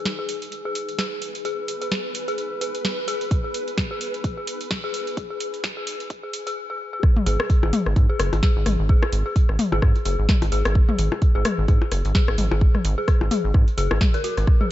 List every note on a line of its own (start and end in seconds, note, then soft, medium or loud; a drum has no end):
0.00 6.57 D#4 medium
0.00 6.57 G#4 medium
0.00 6.57 B4 medium
0.00 6.57 G#5 medium
0.05 snare medium
0.05 closed hi-hat medium
0.19 0.21 G#4 medium
0.29 open hi-hat medium
0.42 closed hi-hat soft
0.52 closed hi-hat medium
0.65 0.70 G#4 medium
0.75 open hi-hat medium
0.89 closed hi-hat soft
0.98 1.01 G#4 medium
0.98 snare loud
0.98 closed hi-hat medium
1.22 open hi-hat medium
1.35 closed hi-hat soft
1.45 1.51 G#4 loud
1.45 closed hi-hat medium
1.68 open hi-hat medium
1.82 1.84 G#4 medium
1.82 closed hi-hat soft
1.92 snare medium
1.92 closed hi-hat medium
2.15 open hi-hat medium
2.28 2.32 G#4 loud
2.28 closed hi-hat soft
2.38 closed hi-hat medium
2.61 2.64 G#4 medium
2.61 open hi-hat loud
2.75 closed hi-hat soft
2.85 snare loud
2.85 closed hi-hat medium
3.08 3.13 G#4 loud
3.08 open hi-hat medium
3.21 closed hi-hat soft
3.31 kick loud
3.31 closed hi-hat medium
3.44 3.46 G#4 medium
3.54 open hi-hat medium
3.68 closed hi-hat soft
3.78 kick loud
3.78 snare medium
3.78 closed hi-hat medium
3.91 3.95 G#4 medium
4.01 open hi-hat loud
4.14 closed hi-hat soft
4.24 kick loud
4.24 closed hi-hat medium
4.37 4.39 G#4 medium
4.47 open hi-hat loud
4.61 closed hi-hat soft
4.71 kick loud
4.71 snare medium
4.71 closed hi-hat medium
4.84 4.88 G#4 loud
4.94 open hi-hat medium
5.07 closed hi-hat soft
5.17 kick loud
5.17 closed hi-hat soft
5.30 5.32 G#4 medium
5.40 open hi-hat medium
5.54 open hi-hat soft
5.64 kick loud
5.64 snare medium
5.64 closed hi-hat medium
5.77 5.79 G#4 medium
5.87 open hi-hat medium
6.00 closed hi-hat soft
6.10 kick loud
6.10 closed hi-hat medium
6.23 6.25 G#4 medium
6.34 open hi-hat loud
6.47 6.49 G#4 medium
6.47 closed hi-hat soft
6.70 6.72 G#4 medium
6.93 6.95 G#4 medium
7.03 kick loud
7.03 cross-stick soft
7.17 mid tom medium
7.26 7.37 G#1 medium
7.26 7.32 G#4 loud
7.26 open hi-hat medium
7.40 cross-stick medium
7.50 kick loud
7.50 closed hi-hat soft
7.63 7.71 G#1 loud
7.63 7.65 G#4 medium
7.63 percussion blips medium
7.73 mid tom loud
7.73 open hi-hat medium
7.86 7.94 G#1 medium
7.86 cross-stick soft
7.96 8.07 G#2 medium
7.96 kick loud
7.96 closed hi-hat soft
8.09 8.14 G#4 loud
8.20 8.30 F#1 medium
8.20 cross-stick medium
8.20 open hi-hat medium
8.33 8.41 G#1 loud
8.33 closed hi-hat soft
8.33 percussion blips medium
8.43 8.45 G#4 medium
8.43 kick loud
8.43 snare loud
8.56 8.64 G#1 medium
8.66 8.77 G#1 medium
8.66 cross-stick soft
8.66 mid tom medium
8.66 open hi-hat medium
8.79 8.97 G#1 medium
8.89 8.95 G#4 loud
8.89 kick loud
9.03 cross-stick medium
9.03 percussion blips medium
9.12 9.23 G#1 medium
9.12 open hi-hat loud
9.26 9.28 G#4 medium
9.36 kick loud
9.36 closed hi-hat soft
9.49 9.57 G#1 loud
9.49 cross-stick soft
9.59 mid tom loud
9.59 open hi-hat loud
9.72 9.80 G#1 loud
9.72 9.77 G#4 loud
9.72 percussion blips medium
9.82 9.93 G#2 medium
9.82 kick loud
9.82 cross-stick medium
9.96 closed hi-hat soft
10.05 10.16 F#1 medium
10.05 10.08 G#4 medium
10.05 open hi-hat medium
10.19 10.27 G#1 loud
10.29 kick loud
10.29 cross-stick soft
10.29 snare loud
10.29 mid tom loud
10.42 10.50 G#1 medium
10.42 closed hi-hat soft
10.42 percussion blips medium
10.52 10.63 G#1 medium
10.52 10.58 G#4 loud
10.52 open hi-hat medium
10.65 10.83 G#1 medium
10.65 cross-stick medium
10.65 closed hi-hat soft
10.75 kick loud
10.89 10.91 G#4 medium
10.89 mid tom medium
10.99 11.09 G#1 loud
10.99 open hi-hat loud
11.12 cross-stick soft
11.12 percussion blips medium
11.22 kick loud
11.22 closed hi-hat soft
11.35 11.43 G#1 loud
11.35 11.39 G#4 loud
11.45 cross-stick medium
11.45 mid tom medium
11.45 open hi-hat loud
11.58 11.66 G#1 medium
11.68 11.79 G#2 medium
11.68 11.71 G#4 medium
11.68 kick loud
11.68 closed hi-hat soft
11.82 percussion blips medium
11.92 12.02 F#1 medium
11.92 cross-stick soft
11.92 open hi-hat medium
12.05 12.13 G#1 loud
12.05 closed hi-hat soft
12.15 12.20 G#4 loud
12.15 kick loud
12.15 snare loud
12.28 12.36 G#1 medium
12.28 cross-stick medium
12.38 12.49 G#1 medium
12.38 mid tom medium
12.38 open hi-hat loud
12.51 12.69 G#1 medium
12.51 12.53 G#4 medium
12.51 percussion blips medium
12.61 kick loud
12.75 cross-stick soft
12.75 mid tom medium
12.85 12.95 G#1 loud
12.85 open hi-hat loud
12.98 13.02 G#4 loud
13.08 kick loud
13.08 cross-stick medium
13.08 closed hi-hat soft
13.21 13.29 G#1 loud
13.21 percussion blips medium
13.31 13.33 G#4 medium
13.31 mid tom medium
13.31 open hi-hat medium
13.44 13.52 G#1 medium
13.54 13.65 G#2 medium
13.54 kick loud
13.54 cross-stick soft
13.68 closed hi-hat soft
13.78 13.88 F#1 medium
13.78 13.83 G#4 loud
13.78 open hi-hat loud
13.91 13.99 G#1 loud
13.91 cross-stick medium
13.91 percussion blips medium
14.01 kick loud
14.01 snare loud
14.01 mid tom medium
14.14 14.17 A#4 loud
14.14 closed hi-hat soft
14.24 14.26 F#4 medium
14.24 open hi-hat loud
14.37 14.45 G#1 loud
14.37 cross-stick soft
14.37 closed hi-hat soft
14.47 kick loud
14.47 cross-stick soft
14.61 14.65 G#4 medium
14.61 mid tom medium